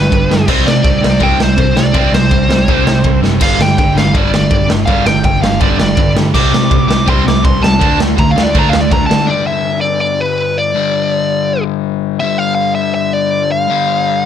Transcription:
Already playing: distorted electric guitar G2 D3 G3, lead electric guitar B4
0.10 picked electric bass G1, overdriven electric guitar G2 D3, kick, ride
0.27 picked electric bass G2, overdriven electric guitar G2 D3
0.31 snare
0.48 picked electric bass C2, overdriven electric guitar C3 G3 C4, kick, crash
0.64 picked electric bass C3, overdriven electric guitar C3 G3, lead electric guitar D5
0.68 snare
0.83 picked electric bass C2, overdriven electric guitar C3 G3, kick, ride
1.00 picked electric bass C2, overdriven electric guitar C3 G3, distorted electric guitar C4, snare
1.20 picked electric bass C2, overdriven electric guitar C3 G3 C4, lead electric guitar G5, kick, ride
1.39 overdriven electric guitar C3 G3, snare
1.43 lead electric guitar C5
1.56 picked electric bass C2, overdriven electric guitar C3 G3, kick, ride
1.75 picked electric bass C2, overdriven electric guitar C3 G3, lead electric guitar D5, snare
1.92 picked electric bass C2, overdriven electric guitar C3 G3 C4, kick, ride
2.11 picked electric bass C2, overdriven electric guitar C3 G3, lead electric guitar C5, snare
2.29 picked electric bass C2, overdriven electric guitar C3 G3, kick, ride
2.49 overdriven electric guitar C3 G3, distorted electric guitar C4, snare
2.68 picked electric bass C2, overdriven electric guitar C3 G3 C4, kick, ride
2.84 picked electric bass C2, overdriven electric guitar C3 G3, snare
3.04 picked electric bass C2, overdriven electric guitar C3 G3, kick, ride
3.22 picked electric bass F#1, overdriven electric guitar C3 G3, snare
3.39 picked electric bass G1, overdriven electric guitar G2 D3 G3, lead electric guitar F5, kick, crash
3.58 picked electric bass G2, overdriven electric guitar G2 D3, lead electric guitar G5, snare
3.77 picked electric bass G1, overdriven electric guitar G2 D3, lead electric guitar G5, kick, ride
3.95 picked electric bass G1, overdriven electric guitar G2 D3, distorted electric guitar G3, lead electric guitar F5, snare
4.13 picked electric bass G1, overdriven electric guitar G2 D3 G3, lead electric guitar D5, kick, ride
4.31 overdriven electric guitar G2 D3, lead electric guitar D5, snare
4.50 picked electric bass G1, overdriven electric guitar G2 D3, kick, ride
4.69 picked electric bass G1, overdriven electric guitar G2 D3, snare
4.86 picked electric bass G1, overdriven electric guitar G2 D3 G3, lead electric guitar F5, kick, ride
5.06 picked electric bass G1, overdriven electric guitar G2 D3, lead electric guitar G5, snare
5.23 picked electric bass G1, overdriven electric guitar G2 D3, lead electric guitar G5, kick, ride
5.40 overdriven electric guitar G2 D3, distorted electric guitar G3, lead electric guitar F5, snare
5.60 picked electric bass G1, overdriven electric guitar G2 D3 G3, lead electric guitar D5, kick, ride
5.79 picked electric bass G1, overdriven electric guitar G2 D3, lead electric guitar D5, snare
5.97 picked electric bass G1, overdriven electric guitar G2 D3, kick, ride
6.17 overdriven electric guitar G2 D3, picked electric bass G2, snare
6.34 picked electric bass C2, overdriven electric guitar C3 G3 C4, lead electric guitar D6, kick, crash
6.52 overdriven electric guitar C3 G3, picked electric bass C3, snare
6.71 picked electric bass C2, overdriven electric guitar C3 G3, kick, ride
6.88 picked electric bass C2, overdriven electric guitar C3 G3, distorted electric guitar C4, lead electric guitar D6, snare
6.93 distorted electric guitar C3
7.06 picked electric bass C2, overdriven electric guitar C3 G3 C4, lead electric guitar C6, kick, ride
7.25 overdriven electric guitar C3 G3, lead electric guitar D6, snare
7.44 picked electric bass C2, overdriven electric guitar C3 G3, lead electric guitar C6, kick, ride
7.62 picked electric bass C2, overdriven electric guitar C3 G3, lead electric guitar A5, snare
7.79 picked electric bass D2, overdriven electric guitar D3 A3 D4, kick, ride
7.99 picked electric bass D2, overdriven electric guitar D3 A3, snare
8.17 picked electric bass D2, overdriven electric guitar D3 A3, lead electric guitar A#5, kick, ride
8.31 lead electric guitar F5
8.36 overdriven electric guitar D3 A3, distorted electric guitar D4, snare
8.43 lead electric guitar D5
8.54 picked electric bass D2, overdriven electric guitar D3 A3 D4, kick, ride
8.59 lead electric guitar A#5
8.69 overdriven electric guitar D3 A3, lead electric guitar F5
8.73 picked electric bass D2, snare
8.81 lead electric guitar D5
8.90 picked electric bass D2, overdriven electric guitar D3 A3, lead electric guitar A#5, kick, ride
9.06 overdriven electric guitar D3 A3, lead electric guitar A5
9.10 picked electric bass D3, snare
9.26 overdriven electric guitar G2 D3 G3, lead electric guitar D5
9.47 lead electric guitar E5
9.81 lead electric guitar D5
10.01 lead electric guitar D5
10.20 lead electric guitar B4
10.58 lead electric guitar D5
10.74 overdriven electric guitar G2 D3 G3
12.20 overdriven electric guitar G2 D3 G3, lead electric guitar E5
12.38 lead electric guitar F5
12.55 lead electric guitar F5
12.75 lead electric guitar E5
12.94 lead electric guitar E5
13.13 lead electric guitar D5
13.52 lead electric guitar F5
13.68 overdriven electric guitar G2 D3 G3

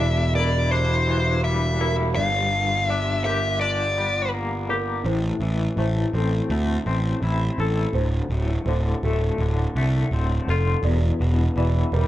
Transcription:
Already playing: picked electric bass E1, clean electric guitar E2, string section D3 G3 A#3 E4, lead electric guitar E5
0.00 clean electric guitar D4, felt piano D5
0.35 clean electric guitar E4, felt piano A#4, lead electric guitar D5
0.71 clean electric guitar D4, lead electric guitar C5
1.09 clean electric guitar E3
1.44 clean electric guitar G3, lead electric guitar E5
1.81 clean electric guitar E4, felt piano A#4
2.15 picked electric bass G1, clean electric guitar G2, string section F4, felt piano D5, lead electric guitar F5
2.89 clean electric guitar D4, felt piano D5, lead electric guitar E5
3.24 clean electric guitar G4, felt piano A#4, lead electric guitar E5
3.61 clean electric guitar D4, lead electric guitar D5
3.98 clean electric guitar G3
4.34 clean electric guitar A#3
4.69 clean electric guitar G4, felt piano A#4
5.05 picked electric bass A1, clean electric guitar A2, felt piano C5
5.40 picked electric bass A1, clean electric guitar E3
5.77 picked electric bass A1, clean electric guitar A3, felt piano C5
6.13 picked electric bass A1, clean electric guitar C4, felt piano A4
6.50 picked electric bass D2, clean electric guitar A3
6.86 picked electric bass A1, clean electric guitar C4
7.22 picked electric bass A1, clean electric guitar E4
7.58 picked electric bass A1, felt piano A4, clean electric guitar A4
7.93 picked electric bass D1, clean electric guitar D2, felt piano C5
8.30 picked electric bass D1, clean electric guitar A2
8.66 picked electric bass D1, clean electric guitar D3, felt piano C5
9.03 picked electric bass D1, clean electric guitar A3, felt piano A4
9.38 picked electric bass D1, clean electric guitar D3
9.75 picked electric bass C2, clean electric guitar A3
10.11 picked electric bass D1, clean electric guitar C4
10.47 picked electric bass F1, clean electric guitar F4, felt piano A4
10.83 picked electric bass E1, clean electric guitar E2, felt piano D5
11.20 picked electric bass E1, clean electric guitar B2
11.56 picked electric bass E1, clean electric guitar E3, felt piano D5
11.92 picked electric bass E1, clean electric guitar G3, felt piano A#4

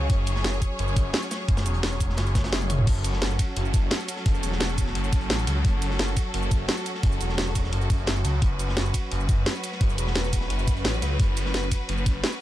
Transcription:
Already playing: string section F#3 C#4 G#4 C#5
0.10 detuned saw bass F#1, kick, closed hi-hat
0.27 closed hi-hat, shaker
0.36 snare
0.44 snare, closed hi-hat
0.53 shaker
0.62 kick, closed hi-hat, shaker
0.79 detuned saw bass F#1, closed hi-hat
0.88 shaker
0.96 kick, closed hi-hat, shaker
1.13 snare, closed hi-hat
1.22 snare, shaker
1.31 snare, closed hi-hat, shaker
1.40 snare
1.49 detuned saw bass F#1, kick, closed hi-hat
1.57 snare, closed hi-hat, shaker
1.66 detuned saw bass E1, snare, closed hi-hat, shaker
1.74 closed hi-hat
1.83 snare, closed hi-hat
1.92 snare, shaker
2.00 kick, closed hi-hat, open hi-hat, shaker
2.09 snare
2.17 detuned saw bass F#1, snare, closed hi-hat
2.27 closed hi-hat, shaker
2.35 kick, snare, closed hi-hat, shaker
2.44 snare, closed hi-hat
2.53 snare, closed hi-hat
2.61 high tom, shaker
2.70 closed hi-hat, mid tom, shaker
2.79 mid tom
2.87 detuned saw bass F#1, string section F#4 A4, kick, closed hi-hat, crash
3.04 closed hi-hat, ride bell, shaker
3.13 snare
3.22 snare, closed hi-hat
3.31 shaker
3.39 kick, closed hi-hat, ride bell, shaker
3.56 detuned saw bass F#1, closed hi-hat
3.65 shaker
3.74 kick, closed hi-hat, ride bell, shaker
3.91 snare, closed hi-hat
4.00 snare, shaker
4.08 closed hi-hat, ride bell, shaker
4.17 snare
4.26 detuned saw bass F#1, kick, closed hi-hat
4.35 closed hi-hat, shaker
4.43 detuned saw bass E1, closed hi-hat, ride bell, shaker
4.52 snare
4.60 snare, closed hi-hat
4.69 snare, shaker
4.77 kick, closed hi-hat, open hi-hat, ride bell, shaker
4.86 snare
4.95 detuned saw bass F#1, closed hi-hat
5.04 closed hi-hat, shaker
5.13 kick, closed hi-hat, ride bell, shaker
5.21 closed hi-hat
5.29 detuned saw bass A1, snare, closed hi-hat
5.39 shaker
5.47 detuned saw bass C#2, closed hi-hat, ride bell, shaker
5.65 detuned saw bass F#1, kick, closed hi-hat
5.82 closed hi-hat, ride bell, shaker
5.90 snare
5.99 snare, closed hi-hat
6.08 shaker
6.17 kick, closed hi-hat, ride bell, shaker
6.34 detuned saw bass F#1, closed hi-hat
6.43 shaker
6.51 kick, closed hi-hat, ride bell, shaker
6.68 snare, closed hi-hat
6.77 snare, shaker
6.86 closed hi-hat, ride bell, shaker
6.95 snare
7.03 detuned saw bass F#1, kick, closed hi-hat
7.12 closed hi-hat, shaker
7.20 detuned saw bass E1, closed hi-hat, ride bell, shaker
7.29 snare
7.38 snare, closed hi-hat
7.47 snare, shaker
7.55 kick, closed hi-hat, open hi-hat, ride bell, shaker
7.64 snare
7.73 detuned saw bass F#1, closed hi-hat
7.81 closed hi-hat, shaker
7.90 kick, closed hi-hat, ride bell, shaker
7.98 closed hi-hat
8.07 detuned saw bass F#1, snare, closed hi-hat
8.16 shaker
8.25 detuned saw bass C#2, closed hi-hat, ride bell, shaker
8.42 detuned saw bass F#1, string section B4, kick, closed hi-hat
8.59 closed hi-hat, ride bell, shaker
8.69 snare
8.77 snare, closed hi-hat
8.85 shaker
8.94 kick, closed hi-hat, ride bell, shaker
9.12 detuned saw bass F#1, closed hi-hat
9.20 shaker
9.29 kick, closed hi-hat, ride bell, shaker
9.46 snare, closed hi-hat
9.55 snare, shaker
9.64 closed hi-hat, ride bell, shaker
9.72 snare
9.81 detuned saw bass F#1, kick, closed hi-hat
9.90 closed hi-hat, shaker
9.98 detuned saw bass E1, closed hi-hat, ride bell, shaker
10.07 snare
10.15 snare, closed hi-hat
10.24 snare, shaker
10.33 kick, closed hi-hat, open hi-hat, ride bell, shaker
10.41 snare
10.50 detuned saw bass F#1, closed hi-hat
10.59 closed hi-hat, shaker
10.68 kick, closed hi-hat, ride bell, shaker
10.77 closed hi-hat
10.85 detuned saw bass A1, snare, closed hi-hat
10.94 shaker
11.02 detuned saw bass C#2, closed hi-hat, ride bell, shaker
11.20 detuned saw bass F#1, kick, closed hi-hat
11.37 closed hi-hat, ride bell, shaker
11.46 snare
11.54 snare, closed hi-hat
11.63 shaker
11.71 kick, closed hi-hat, ride bell, shaker
11.89 detuned saw bass F#1, closed hi-hat
11.98 shaker
12.06 kick, closed hi-hat, ride bell, shaker
12.24 snare, closed hi-hat
12.32 snare, shaker

